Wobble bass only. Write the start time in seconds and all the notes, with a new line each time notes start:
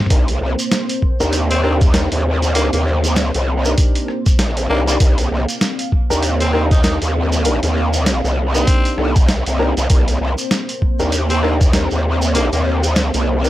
0.11 C2
0.41 C2
1.20 D#2
2.12 D#2
2.53 D2
2.73 D#2
3.14 D2
3.35 C2
4.39 A#1
4.70 C2
5.00 C2
5.31 C2
6.10 D#2
7.02 D#2
7.63 D#2
8.24 C2
8.98 C2
9.47 C2
9.77 C2
9.90 C2
10.21 C2
11.00 D#2
11.92 D#2
12.53 D#2
12.94 D2
13.14 C2